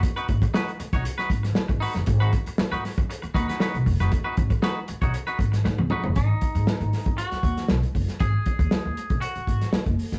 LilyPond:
<<
  \new Staff \with { instrumentName = "Clean electric guitar" } { \time 4/4 \key gis \minor \tempo 4 = 117 r16 <dis' fis' b'>16 r8 <dis' fis' b'>16 r8 <dis' fis' cis''>16 r16 <dis' fis' b'>16 r4 <dis' fis' b'>16 r16 | r16 <dis' fis' b'>16 r8. <dis' fis' b'>16 r4 <dis' fis' b'>16 <dis' fis' b'>16 <dis' fis' b'>16 r8 <dis' fis' b'>16 | r16 <dis' fis' b'>16 r8 <dis' fis' b'>16 r8 <dis' fis' cis''>16 r16 <dis' fis' b'>16 r4 <dis' fis' b'>16 r16 | dis'2 fis'4 r4 |
gis'2 fis'4 r4 | }
  \new Staff \with { instrumentName = "Upright bass" } { \clef bass \time 4/4 \key gis \minor r8 gis,,16 r4 b,,16 r8 gis,,8 r16 gis,,16 r16 fis,,16 | gis,,8 r8. gis,16 r16 fis,16 r8 dis,16 r8 b,,16 eis,,16 fis,,16 | r8 gis,,16 r4 b,,16 r8 gis,,8 gis,16 cis,16 r16 fis,,16 | gis,,16 r8 gis,16 r16 gis,,16 r16 gis,,16 r8 dis,8 b,,16 r16 fis,,16 r16 |
gis,,16 r8 dis,16 r16 dis,16 r16 b,,16 r8 gis,,16 r8 fis,,16 r16 gis,,16 | }
  \new DrumStaff \with { instrumentName = "Drums" } \drummode { \time 4/4 <hh bd>16 hh16 <hh bd>16 <hh bd>16 sn16 hh16 hh16 <hh bd>16 hh16 sn16 <hh bd>16 <hh sn>16 sn16 <hh bd>16 hho16 <hh sn>16 | <hh bd>16 hh16 <hh bd>16 hh16 sn16 hh16 <hho sn>16 <hh bd>16 hh16 hh16 <hh bd>16 <hh sn>16 sn16 hh16 <hho bd>16 <hh sn>16 | <hh bd>8 <hh bd>16 <hh bd>16 sn8 hh16 <hh bd>16 hh16 hh16 <hh bd>16 <hh sn>16 sn16 tommh16 toml16 tomfh16 | <hh bd>8 <hh bd>16 hh16 sn16 hh16 <hho sn>16 <hh bd>16 hh16 <hh sn>16 <hh bd>16 <hh sn>16 sn16 hh16 <hho bd>16 <hh sn>16 |
<hh bd>8 <hh bd>16 <hh bd>16 sn8 hh16 <hh bd>16 hh16 hh16 <hh bd>16 <hh sn>16 sn16 <hh bd>16 hho16 <hh sn>16 | }
>>